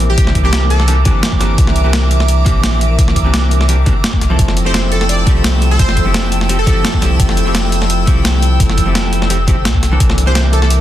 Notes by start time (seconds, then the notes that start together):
Already playing: A#1 E3 A#3 C4 D4 G4 A#4 E5 D6
0.00 closed hi-hat
0.10 G4
0.18 C2, kick, closed hi-hat
0.27 snare
0.35 kick, closed hi-hat
0.44 E3 A#3 C4 D4 G4
0.53 snare, closed hi-hat
0.70 A4, closed hi-hat
0.80 snare
0.87 E3 A#3 C4 D4 G4, closed hi-hat
1.05 E3 A#3 C4 D4 G4, kick, closed hi-hat
1.23 snare, closed hi-hat
1.32 kick
1.39 G1 E3 A#3 C4 D4 G4, snare, closed hi-hat
1.58 C2, kick, closed hi-hat
1.67 snare
1.76 closed hi-hat
1.84 E3 A#3 C4 D4 G4
1.93 snare, closed hi-hat
2.11 closed hi-hat
2.20 snare
2.28 closed hi-hat
2.45 A#1 E3 A#3 C4 D4 G4, kick, closed hi-hat
2.63 snare, closed hi-hat
2.81 closed hi-hat
2.99 C2, kick, closed hi-hat
3.08 snare
3.16 kick, closed hi-hat
3.24 E3 A#3 C4 D4 G4
3.34 snare, closed hi-hat
3.51 closed hi-hat
3.61 snare
3.68 E3 A#3 C4 D4 G4, closed hi-hat
3.86 E3 A#3 C4 D4 G4, kick, closed hi-hat
4.04 snare, closed hi-hat
4.13 kick
4.21 C2, snare, closed hi-hat
4.30 F3 A3 C4 E4 A4
4.39 F1 A4 G5 E6, kick, closed hi-hat
4.48 snare
4.57 closed hi-hat
4.65 F3 A3 C4 E4 G4 C5
4.74 C5, snare, closed hi-hat
4.92 A4, closed hi-hat
5.01 A4, snare
5.09 D5, closed hi-hat
5.25 C2 F3 A3 C4 E4 G4, kick, closed hi-hat
5.44 snare, closed hi-hat
5.62 closed hi-hat
5.71 A4
5.79 F1 C5, kick, closed hi-hat
5.89 snare
5.97 kick, closed hi-hat
6.05 F3 A3 C4 E4 G4
6.14 snare, closed hi-hat
6.32 closed hi-hat
6.41 snare
6.49 F3 A3 C4 E4 G4, closed hi-hat
6.59 A4
6.66 F3 A3 C4 E4 G4, kick, closed hi-hat
6.85 snare, closed hi-hat
6.94 kick
7.01 C2 F3 A3 C4 E4 G4, snare, closed hi-hat
7.20 F1, kick, closed hi-hat
7.29 snare
7.37 closed hi-hat
7.45 F3 A3 C4 E4 G4
7.55 snare, closed hi-hat
7.72 closed hi-hat
7.82 snare
7.90 closed hi-hat
8.06 C2 F3 A3 C4 E4 G4, kick, closed hi-hat
8.25 snare, closed hi-hat
8.42 closed hi-hat
8.60 F1, kick, closed hi-hat
8.70 snare
8.78 kick, closed hi-hat
8.86 F3 A3 C4 E4 G4
8.95 snare, closed hi-hat
9.13 closed hi-hat
9.22 snare
9.29 F3 A3 C4 E4 G4, closed hi-hat, swell
9.47 F3 A3 C4 E4 G4, kick, closed hi-hat
9.65 C2, snare, closed hi-hat
9.75 kick
9.83 snare, closed hi-hat
9.91 E3 A#3 C4 D4 A4
10.00 C2 A#4 E5 D6, kick, closed hi-hat
10.10 snare
10.18 closed hi-hat
10.26 E3 A#3 C4 D4 G4 C5
10.35 C5, snare, closed hi-hat
10.53 A4, closed hi-hat
10.62 A4, snare
10.70 closed hi-hat